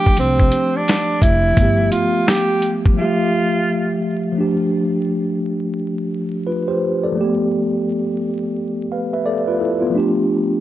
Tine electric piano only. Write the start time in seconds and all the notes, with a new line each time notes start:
Already playing: F3 A3 D4 G4
1.54 F3 A3
1.60 B3 G4
2.93 F3 G3
2.99 A3 G4 E5
4.32 F3 A3
4.38 D4 G4
6.47 F4 B4
6.68 G4 C5
7.04 A4 D5
7.12 F3 A3
7.18 A#3 G4
7.24 B3
8.92 B4 F5
9.13 B4 E5
9.26 A4 D5
9.48 F4 B4
9.60 E4 A4
9.81 B3 F4
9.90 F3 A3
9.95 D4 G4